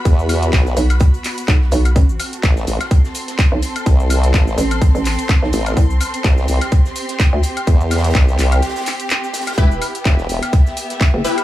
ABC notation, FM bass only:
X:1
M:4/4
L:1/16
Q:"Swing 16ths" 1/4=126
K:Clyd
V:1 name="FM bass" clef=bass
z6 B,,,2 z4 B,,,2 B,,,2 | A,,,2 z8 z3 B,,, z2 | z6 A,,,3 A,,,2 z2 B,,, z2 | C,,2 z8 z3 D,, z2 |
z16 | E,,,2 z8 z3 F,,, z2 |]